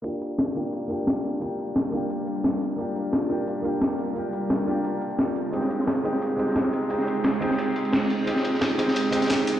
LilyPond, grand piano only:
\new Staff \with { instrumentName = "Grand piano" } { \time 4/4 \key g \phrygian \tempo 4 = 175 <bes d' f' g'>4. <bes d' f' g'>4 <bes d' f' g'>4. | <bes d' f' g'>4. <bes d' f' g'>2~ <bes d' f' g'>8 | <bes d' f' g'>4. <bes d' f' g'>4 <bes d' f' g'>4. | <bes d' f' g'>4. <bes d' f' g'>2~ <bes d' f' g'>8 |
<aes c' ees' g'>4. <aes c' ees' g'>4 <aes c' ees' g'>4. | <aes c' ees' g'>4. <aes c' ees' g'>2~ <aes c' ees' g'>8 | <aes c' ees' g'>4. <aes c' ees' g'>4 <aes c' ees' g'>4. | }